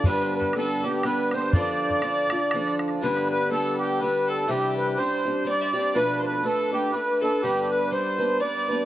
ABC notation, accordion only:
X:1
M:3/4
L:1/8
Q:"Swing" 1/4=122
K:Gmix
V:1 name="Accordion"
B B A G B c | d4- d z | B B A G B A | G B c2 d2 |
B B A G B A | G B c2 d2 |]